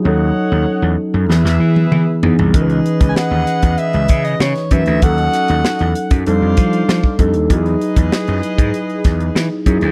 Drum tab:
HH |----------------|xxxx--xxxxxx-xxx|xxxx-xxxx-xx--xx|xxxx-xxxxxxx--xx|
SD |--------oo------|----o-------oo--|--o-o-------o---|----o-----o-o---|
T1 |-----------o----|----------------|----------------|----------------|
T2 |------------o---|----------------|----------------|----------------|
FT |--------------oo|----------------|----------------|----------------|
BD |----------------|o--o---o--o---o-|o------o--o--oo-|o--o---o--o---o-|